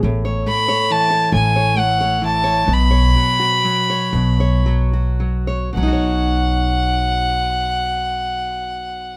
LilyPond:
<<
  \new Staff \with { instrumentName = "Fiddle" } { \time 6/8 \key b \mixolydian \tempo 4. = 39 r8 b''8 a''8 gis''8 fis''8 a''8 | b''2 r4 | fis''2. | }
  \new Staff \with { instrumentName = "Steel-string acoustic guitar" } { \time 6/8 \key b \mixolydian << { r16 cis''8 cis''8 cis''8 cis''8 cis''8 cis''16 | r16 cis''8 fis'8 cis''8 cis''8 fis'8 cis''16 | <fis dis' fis' cis''>2. | } \\ { a,8 a8 e8 a,8 a8 e8 | b,8 fis8 fis8 b,8 fis8 fis8 | b,2. | } >> }
  \new Staff \with { instrumentName = "Upright bass" } { \clef bass \time 6/8 \key b \mixolydian a,,8 r4 a,,4. | b,,8 r4 b,,4. | b,,2. | }
>>